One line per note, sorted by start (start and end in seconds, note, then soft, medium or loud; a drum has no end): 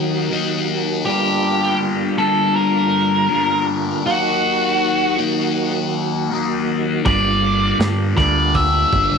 0.00 0.29 D#3 medium
0.00 1.03 F#3 medium
0.00 0.32 A#3 medium
0.00 9.18 A#3 soft
0.00 0.28 D#4 medium
0.00 1.02 D#4 medium
0.00 1.03 F#4 medium
0.30 1.04 D#3 medium
0.30 1.10 A#3 medium
0.30 1.05 D#4 medium
1.05 2.17 G2 medium
1.05 2.18 D3 medium
1.05 4.03 G3 medium
1.05 4.03 D4 medium
1.05 4.03 F4 medium
1.05 1.77 G4 medium
1.10 2.17 G3 medium
2.18 3.28 G2 medium
2.18 3.30 D3 medium
2.18 3.29 G3 medium
2.18 2.53 A4 medium
2.56 3.65 A#4 medium
3.29 4.03 G2 medium
3.29 4.04 D3 medium
3.29 4.05 G3 medium
4.05 5.16 D#3 medium
4.05 7.03 F#3 medium
4.05 5.19 A#3 medium
4.05 7.02 D#4 medium
4.05 7.02 F#4 medium
4.05 5.15 F#4 medium
4.09 5.17 D#4 medium
5.18 6.30 D#3 medium
5.18 6.33 A#3 medium
5.18 6.29 D#4 medium
6.31 7.03 D#3 medium
6.31 7.08 A#3 medium
6.35 7.05 D#4 medium
7.05 7.72 G1 medium
7.05 8.15 G2 medium
7.05 8.16 D3 medium
7.05 9.18 G3 medium
7.05 8.15 G3 medium
7.05 9.18 D4 medium
7.05 9.18 F4 medium
7.05 7.77 D5 medium
7.05 kick loud
7.05 open hi-hat soft
7.79 8.13 G2 medium
7.79 snare loud
7.79 open hi-hat soft
8.16 8.84 D2 medium
8.16 9.18 G2 medium
8.16 9.18 D3 medium
8.16 9.18 G3 medium
8.16 8.56 D5 medium
8.16 kick medium
8.16 snare soft
8.54 9.18 E5 medium
8.54 kick medium
8.54 open hi-hat soft
8.92 9.09 G1 medium
8.92 kick medium
9.11 9.18 G1 medium